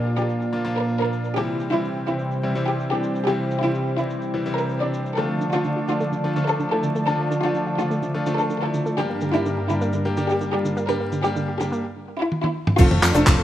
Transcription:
Already playing: analog synth pad A#2 A#3 F4 D5 F5, grand piano F3 A#3 D4 F4
0.17 grand piano F3 A#3 D4 F4, violin section G4, cabasa
0.29 cabasa
0.42 cabasa
0.53 grand piano F3 A#3 D4 F4
0.65 grand piano F3 A#3 D4 F4, cabasa
0.77 violin section A#4, cabasa
0.89 cabasa
1.00 grand piano F3 A#3 D4 F4, violin section A#4
1.13 cabasa
1.24 cabasa
1.36 analog synth pad C3 G3 E4 C5 G5, grand piano E3 G3 C4 E4, violin section G4, cabasa
1.60 cabasa
1.72 grand piano E3 G3 C4 E4, violin section E4, cabasa
1.85 cabasa
2.08 grand piano E3 G3 C4 E4, violin section E4, cabasa
2.19 cabasa
2.31 cabasa
2.43 grand piano E3 G3 C4 E4
2.55 grand piano E3 G3 C4 E4, cabasa
2.67 violin section G4, cabasa
2.80 cabasa
2.91 grand piano E3 G3 C4 D4, violin section G4
3.03 cabasa
3.15 cabasa
3.27 grand piano E3 G3 C4 E4, violin section G4, cabasa
3.51 cabasa
3.62 grand piano E3 G3 C4 E4, violin section E4, cabasa
3.75 cabasa
3.98 grand piano E3 G3 C4 E4, violin section E4, cabasa
4.10 cabasa
4.22 cabasa
4.34 grand piano E3 G3 C4 E4
4.46 grand piano E3 G3 C4 E4, cabasa
4.58 violin section A#4, cabasa
4.69 cabasa
4.81 grand piano E3 G3 C4 D4, violin section D5
4.94 cabasa
5.06 cabasa
5.16 analog synth pad D3 F3 A3 D5 A5, synth arpeggio sound D3, grand piano F3 A3 D4 F4, violin section A4, cabasa
5.29 synth arpeggio sound A3
5.41 synth arpeggio sound D3, cabasa
5.52 grand piano F3 A3 D4 F4, synth arpeggio sound D4, violin section F4, cabasa
5.64 synth arpeggio sound D3, cabasa
5.76 synth arpeggio sound F4
5.88 synth arpeggio sound D3, grand piano F3 A3 D4 F4, violin section F4, cabasa
6.00 synth arpeggio sound A3, cabasa
6.12 synth arpeggio sound D3, cabasa
6.24 grand piano F3 A3 D4 F4, synth arpeggio sound A3
6.36 synth arpeggio sound D3, grand piano F3 A3 D4 F4, cabasa
6.48 synth arpeggio sound D4, violin section A4, cabasa
6.60 synth arpeggio sound D3, cabasa
6.72 grand piano F3 A3 D4 E4, synth arpeggio sound F4, violin section A4
6.83 synth arpeggio sound D3, cabasa
6.95 synth arpeggio sound A3, cabasa
7.07 synth arpeggio sound D3, grand piano F3 A3 D4 F4, violin section A4, cabasa
7.19 synth arpeggio sound A3
7.31 synth arpeggio sound D3, cabasa
7.43 grand piano F3 A3 D4 F4, synth arpeggio sound D4, violin section F4, cabasa
7.55 synth arpeggio sound D3, cabasa
7.67 synth arpeggio sound F4
7.79 synth arpeggio sound D3, grand piano F3 A3 D4 F4, violin section F4, cabasa
7.91 synth arpeggio sound A3, cabasa
8.02 synth arpeggio sound D3, cabasa
8.14 grand piano F3 A3 D4 F4, synth arpeggio sound A3
8.26 synth arpeggio sound D3, grand piano F3 A3 D4 F4, cabasa
8.38 synth arpeggio sound D4, violin section A4, cabasa
8.50 synth arpeggio sound D3, cabasa
8.62 grand piano F3 A3 D4 E4, synth arpeggio sound F4, violin section A4
8.74 synth arpeggio sound D3, cabasa
8.86 synth arpeggio sound A3, cabasa
8.98 analog synth pad G2 G3 D4 A#4, synth arpeggio sound D3, grand piano G3 A#3 D4 G4, violin section G4, cabasa
9.10 synth arpeggio sound A#3
9.21 synth arpeggio sound D3, cabasa
9.33 grand piano G3 A#3 D4 G4, synth arpeggio sound D4, violin section E4, cabasa
9.46 synth arpeggio sound D3, cabasa
9.58 synth arpeggio sound G4
9.69 synth arpeggio sound D3, grand piano G3 A#3 D4 G4, violin section E4, cabasa
9.81 synth arpeggio sound A#3, cabasa
9.93 synth arpeggio sound D3, cabasa
10.05 grand piano G3 A#3 D4 G4, synth arpeggio sound A#3
10.17 synth arpeggio sound D3, grand piano G3 A#3 D4 G4, cabasa
10.29 synth arpeggio sound D4, violin section G4, cabasa
10.41 synth arpeggio sound D3, cabasa
10.53 grand piano G3 A#3 D4 F4, synth arpeggio sound G4, violin section G4
10.65 synth arpeggio sound D3, cabasa
10.77 synth arpeggio sound A#3, cabasa
10.88 synth arpeggio sound D3, grand piano G3 A#3 D4 G4, violin section A#4, cabasa
11.01 synth arpeggio sound A#3
11.12 synth arpeggio sound D3, cabasa
11.24 grand piano G3 A#3 D4 G4, synth arpeggio sound D4, violin section G4, cabasa
11.36 synth arpeggio sound D3, cabasa
11.48 synth arpeggio sound G4
11.60 synth arpeggio sound D3, grand piano G3 A#3 D4 G4, violin section G4, cabasa
11.72 synth arpeggio sound A#3, cabasa
12.19 violin section E4
12.32 high tom
12.43 violin section E4, high tom
12.67 mid tom
12.78 analog synth bass F1, synth arpeggio sound F3, grand piano A3 C4 F4 A4, violin section F4, analog synth pad F4 A4 C5 A5, kick, closed hi-hat, crash, cabasa
12.91 analog synth bass F1, synth arpeggio sound C4, high tom
13.03 analog synth bass F2, synth arpeggio sound F3, clap, open hi-hat, cabasa
13.14 analog synth bass F1, grand piano A3 C4 F4 A4, violin section D4, synth arpeggio sound F4, closed hi-hat, cabasa
13.27 analog synth bass F1, synth arpeggio sound F3, kick, clap, closed hi-hat, cabasa
13.38 analog synth bass F1, synth arpeggio sound A4

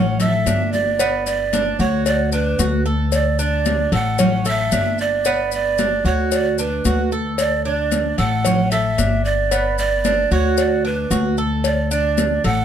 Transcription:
Already playing: upright bass A1, cuban tres C#4, pan flute F#5
0.20 cuban tres A4, pan flute E5, cowbell, high conga, low conga, maracas
0.46 upright bass G1, cuban tres D4, cowbell, high conga, maracas
0.73 pan flute D5, high conga, maracas
0.99 cuban tres B3, cowbell, high conga, maracas
1.26 pan flute D5, high conga, maracas
1.53 cuban tres D4, cowbell, high conga, maracas
1.79 upright bass D2, cuban tres F#4, pan flute C#5, high conga, maracas
2.06 pan flute D5, cowbell, high conga, maracas
2.32 cuban tres D4, pan flute B4, high conga, maracas
2.59 upright bass D2, cuban tres F#4, cowbell, high conga, maracas
2.86 cuban tres A4, maracas
3.12 pan flute D5, cowbell, high conga, maracas
3.39 cuban tres D4, pan flute D5, high conga, maracas
3.66 cowbell, high conga, maracas
3.92 upright bass A1, cuban tres A4, pan flute F#5, cowbell, maracas
4.18 cuban tres C#4, cowbell, high conga, low conga, maracas
4.45 cuban tres A4, pan flute E5, cowbell, high conga, maracas
4.72 upright bass G1, cuban tres D4, cowbell, high conga, maracas
4.98 pan flute D5, maracas
5.25 cuban tres B3, cowbell, high conga, maracas
5.52 pan flute D5, high conga, maracas
5.78 cuban tres D4, cowbell, high conga, maracas
6.05 upright bass D2, cuban tres F#4, pan flute C#5, high conga, maracas
6.31 pan flute D5, cowbell, high conga, maracas
6.58 cuban tres D4, pan flute B4, high conga, maracas
6.85 upright bass D2, cuban tres F#4, cowbell, high conga, maracas
7.12 cuban tres A4, maracas
7.38 pan flute D5, cowbell, high conga, maracas
7.65 cuban tres D4, pan flute D5, high conga
7.92 cowbell, high conga, maracas
8.18 upright bass A1, cuban tres A4, pan flute F#5, cowbell, maracas
8.45 cuban tres C#4, cowbell, high conga, low conga, maracas
8.71 cuban tres A4, pan flute E5, cowbell, high conga, maracas
8.98 upright bass G1, cuban tres D4, cowbell, high conga, maracas
9.25 pan flute D5, maracas
9.51 cuban tres B3, cowbell, high conga, maracas
9.78 pan flute D5, high conga, maracas
10.04 cuban tres D4, cowbell, high conga, maracas
10.31 upright bass D2, cuban tres F#4, pan flute C#5, high conga, maracas
10.57 pan flute D5, cowbell, high conga, maracas
10.85 cuban tres D4, pan flute B4, high conga
11.11 upright bass D2, cuban tres F#4, cowbell, high conga, maracas
11.38 cuban tres A4, maracas
11.64 pan flute D5, cowbell, high conga, maracas
11.91 cuban tres D4, pan flute D5, high conga, maracas
12.18 cowbell, high conga, maracas
12.44 upright bass A1, cuban tres A4, pan flute F#5, cowbell, maracas

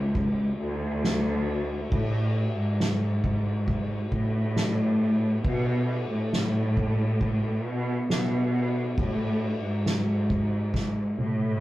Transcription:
Already playing: cello section C#2
0.15 kick, ride
0.59 cello section D2, ride
0.81 ride
1.03 snare, ride
1.47 ride
1.70 ride
1.92 cello section A2, kick, ride
2.35 ride
2.57 cello section G#2
2.79 snare, ride
3.24 kick, ride
3.67 kick, ride
4.12 cello section A2, kick, ride
4.34 ride
4.56 snare, ride
5.00 ride
5.44 cello section B2, kick, ride
5.88 ride
6.11 cello section A2
6.32 snare, ride
6.77 kick, ride
7.20 kick, ride
7.65 cello section B2, ride
8.09 cello section B2, snare, ride
8.53 ride
8.76 ride
8.97 cello section A2, kick, ride
9.41 ride
9.64 cello section G#2
9.85 snare, ride
10.30 kick, ride
10.74 kick, snare
11.18 cello section A2, high tom

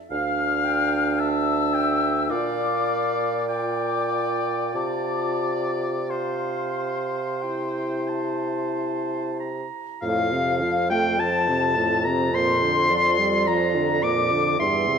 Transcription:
0.10 bassoon D2, french horn D4, clarinet F5, oboe F5, flute F6
0.65 clarinet G5
1.19 oboe E5, clarinet A5, flute E6
1.74 clarinet G5
2.30 bassoon A#2, french horn F4, oboe D5, clarinet F5, flute D6
3.48 oboe D5, clarinet G5, flute D6
4.75 bassoon C3, oboe D5, clarinet A5, flute D6
6.09 oboe C5, clarinet F5, flute C6
7.42 french horn E4, clarinet G5
8.08 clarinet A5
9.40 clarinet A#5
10.02 bassoon F2, french horn A2, oboe F5, flute F5
10.32 french horn C3
10.62 french horn F3
10.90 french horn A3, oboe G5, flute G5
11.19 french horn F3, oboe A5, flute A5
11.49 french horn C3
11.77 french horn A2
12.04 french horn C3, oboe A#5, flute A#5
12.34 french horn A#2, clarinet C5, flute C6, oboe C6
12.62 french horn D3
12.91 french horn F3, clarinet D5
13.19 french horn G3
13.47 french horn F3, oboe A#5, flute A#5
13.75 french horn D3
14.03 french horn A#2, flute D6, oboe D6
14.32 french horn D3
14.60 bassoon E2, french horn G2, clarinet E5, flute C6, oboe C6
14.88 french horn C3

